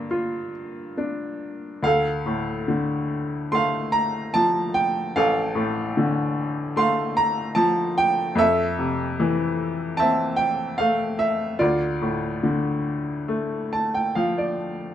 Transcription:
0.00 1.79 G2 medium
0.00 0.50 D3 soft
0.00 0.93 A#3 soft
0.00 1.86 A#4 medium
0.00 1.84 F5 medium
0.11 1.80 F4 soft
0.97 1.81 D4 soft
1.83 5.12 D2 medium
1.83 3.49 A4 medium
1.83 3.53 F5 medium
2.26 3.89 A2 soft
2.68 4.30 D3 soft
3.52 5.12 A3 soft
3.52 5.14 F5 medium
3.52 3.94 C6 medium
3.92 4.36 A#5 medium
4.34 5.94 F3 soft
4.34 4.73 A5 medium
4.74 5.13 G5 medium
5.16 8.34 A1 medium
5.16 6.74 A4 medium
5.16 6.74 F5 medium
5.55 7.13 A2 soft
5.97 7.54 D3 soft
6.76 8.33 A3 soft
6.76 8.34 F5 medium
6.76 7.15 C6 medium
7.17 7.58 A#5 medium
7.55 8.35 F3 medium
7.55 7.98 A5 medium
7.98 8.39 G5 medium
8.35 11.54 F2 medium
8.35 9.95 A4 medium
8.35 9.98 E5 medium
8.79 10.34 C3 soft
9.20 10.74 E3 medium
9.97 11.56 C4 soft
9.97 11.17 E5 medium
9.97 10.39 A5 medium
10.36 10.78 G5 medium
10.78 11.58 A3 soft
10.78 11.19 F5 medium
11.19 11.61 E5 medium
11.59 14.94 D2 medium
11.59 14.55 F4 soft
11.59 14.37 D5 medium
12.02 13.68 A2 soft
12.43 14.12 D3 soft
13.28 14.94 A3 soft
13.73 13.93 A5 medium
13.94 14.15 G5 medium
14.15 14.94 F3 soft
14.15 14.36 F5 medium
14.38 14.94 D5 soft

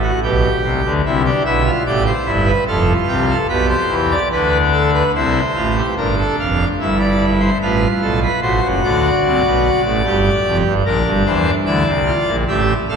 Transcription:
0.00 0.11 A1 medium
0.00 0.11 A2 medium
0.00 0.20 F#4 medium
0.23 0.48 B1 medium
0.23 0.48 B2 medium
0.23 0.93 G4 medium
0.63 0.81 C2 medium
0.63 0.81 C3 medium
0.84 1.02 D2 medium
0.84 1.02 D3 medium
1.05 1.30 C2 medium
1.05 1.30 C3 medium
1.05 1.22 E4 medium
1.25 1.43 D4 medium
1.25 1.42 G4 medium
1.45 1.70 B1 medium
1.45 1.70 B2 medium
1.45 1.63 E4 medium
1.45 1.70 E5 medium
1.66 1.83 F4 medium
1.86 2.11 A1 medium
1.86 2.11 A2 medium
1.86 2.11 G4 medium
1.86 2.03 D5 medium
2.06 2.31 C5 medium
2.26 2.52 G1 medium
2.26 2.51 G2 medium
2.26 2.51 E4 medium
2.47 2.64 B4 medium
2.68 2.93 F1 medium
2.68 2.93 F2 medium
2.68 3.38 F4 medium
2.68 2.93 A4 medium
3.08 3.33 C2 medium
3.08 3.33 C3 medium
3.08 3.25 G4 medium
3.30 3.47 A4 medium
3.49 3.74 B1 medium
3.49 3.74 B2 medium
3.49 4.20 G4 medium
3.49 3.66 B4 medium
3.69 3.95 C5 medium
3.89 4.15 E2 medium
3.89 4.15 E3 medium
4.10 4.28 D5 medium
4.32 5.03 D2 medium
4.32 5.03 D3 medium
4.32 5.03 D4 medium
4.32 4.57 B4 medium
4.73 4.91 A4 medium
4.94 5.11 B4 medium
5.15 5.41 C2 medium
5.15 5.41 C3 medium
5.15 5.40 E4 medium
5.15 5.86 C5 medium
5.55 5.81 A1 medium
5.55 5.81 A2 medium
5.55 5.73 F4 medium
5.76 5.94 G4 medium
5.97 6.23 G1 medium
5.97 6.23 G2 medium
5.97 6.68 D4 medium
5.97 6.15 A#4 medium
6.18 6.36 A4 medium
6.39 6.64 F1 medium
6.39 6.64 F2 medium
6.39 6.65 F5 medium
6.80 7.50 G1 medium
6.80 7.50 G2 medium
6.80 7.50 E4 medium
6.80 6.97 E5 medium
7.00 7.25 D5 medium
7.40 7.58 C5 medium
7.61 7.87 A1 medium
7.61 7.87 A2 medium
7.61 8.32 F4 medium
7.61 7.87 B4 medium
8.02 8.27 B1 medium
8.02 8.27 B2 medium
8.02 8.19 A4 medium
8.22 8.40 B4 medium
8.42 8.60 A1 medium
8.42 8.60 A2 medium
8.42 9.82 F#4 medium
8.42 8.68 C5 medium
8.63 8.80 F#1 medium
8.63 8.80 F#2 medium
8.84 9.09 D2 medium
8.84 9.09 D3 medium
8.84 10.57 D5 medium
9.25 9.42 C2 medium
9.25 9.42 C3 medium
9.44 9.69 B1 medium
9.44 9.69 B2 medium
9.85 10.02 A1 medium
9.85 10.02 A2 medium
10.04 10.29 G1 medium
10.04 10.29 G2 medium
10.04 10.73 G4 medium
10.46 10.63 F1 medium
10.46 10.63 F2 medium
10.65 10.82 G1 medium
10.65 10.82 G2 medium
10.85 11.03 A#1 medium
10.85 11.02 A#2 medium
10.85 11.54 D4 medium
10.85 11.10 A#4 medium
11.06 11.23 G1 medium
11.06 11.23 G2 medium
11.26 11.51 E2 medium
11.26 11.50 E3 medium
11.26 11.51 C5 medium
11.66 11.83 D2 medium
11.66 11.83 D3 medium
11.66 11.91 E4 medium
11.66 12.36 D5 medium
11.86 12.11 C2 medium
11.86 12.11 C3 medium
12.06 12.31 F4 medium
12.27 12.45 A#1 medium
12.27 12.44 A#2 medium
12.48 12.73 A1 medium
12.48 12.73 A2 medium
12.48 12.73 G4 medium
12.48 12.73 E5 medium
12.89 12.96 G1 medium
12.89 12.96 G2 medium
12.89 12.96 A4 medium
12.89 12.96 F5 medium

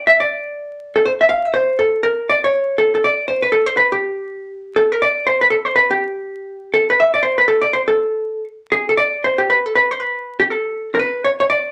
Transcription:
0.07 0.21 E5 medium
0.20 0.96 D5 medium
0.96 1.05 A4 medium
1.05 1.10 C5 medium
1.21 1.29 E5 medium
1.29 1.45 F5 medium
1.45 1.54 E5 medium
1.54 1.79 C5 medium
1.79 2.03 A4 medium
2.03 2.28 A#4 medium
2.29 2.44 D5 medium
2.44 2.76 C#5 medium
2.78 2.93 A4 medium
2.95 3.03 A4 medium
3.04 3.27 D5 medium
3.28 3.42 C5 medium
3.42 3.52 B4 medium
3.52 3.66 A4 medium
3.66 3.76 C5 medium
3.77 3.92 B4 medium
3.92 4.78 G4 medium
4.76 4.92 A4 medium
4.92 5.01 A#4 medium
5.02 5.27 D5 medium
5.26 5.41 C5 medium
5.41 5.45 B4 medium
5.50 5.55 A4 medium
5.65 5.75 C5 medium
5.76 5.89 B4 medium
5.91 6.77 G4 medium
6.74 6.89 A4 medium
6.90 7.00 B4 medium
7.00 7.13 E5 medium
7.14 7.23 D5 medium
7.23 7.37 C5 medium
7.38 7.47 B4 medium
7.48 7.62 A4 medium
7.62 7.73 D5 medium
7.73 7.78 C5 medium
7.88 8.44 A4 medium
8.72 8.88 G#4 medium
8.89 8.93 A4 medium
8.97 9.23 D5 medium
9.24 9.39 C5 medium
9.38 9.48 G4 medium
9.50 9.66 B4 medium
9.66 9.74 A4 medium
9.75 9.91 B4 medium
9.91 10.00 C5 medium
10.00 10.39 B4 medium
10.39 10.44 G4 medium
10.50 10.89 A4 medium
10.95 10.99 A#4 medium
10.99 11.24 B4 medium
11.24 11.29 C#5 medium
11.40 11.44 C#5 medium
11.50 11.72 D5 medium

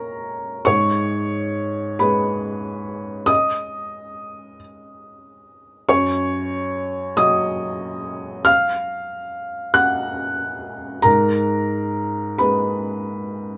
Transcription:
0.00 0.68 F#3 soft
0.00 0.62 A#4 medium
0.00 0.67 C#5 medium
0.00 0.66 A#5 medium
0.00 0.65 C#6 medium
0.65 3.25 G#2 medium
0.65 1.95 C#5 medium
0.65 1.98 C#6 loud
1.99 5.90 G#3 medium
1.99 3.26 B4 medium
1.99 3.29 B5 medium
3.26 4.55 D#5 medium
3.26 4.59 D#6 loud
5.89 8.42 F#2 medium
5.89 7.13 C#5 medium
5.89 7.17 C#6 loud
7.17 11.05 F#3 medium
7.17 8.42 D#5 medium
7.17 8.46 D#6 loud
8.45 9.71 F5 medium
8.45 9.74 F6 loud
9.74 11.01 F#5 medium
9.74 11.05 F#6 loud
11.02 13.57 G#2 medium
11.02 12.35 A#4 medium
11.02 12.39 A#5 loud
12.39 13.57 G#3 soft
12.39 13.57 B4 medium
12.39 13.57 B5 medium

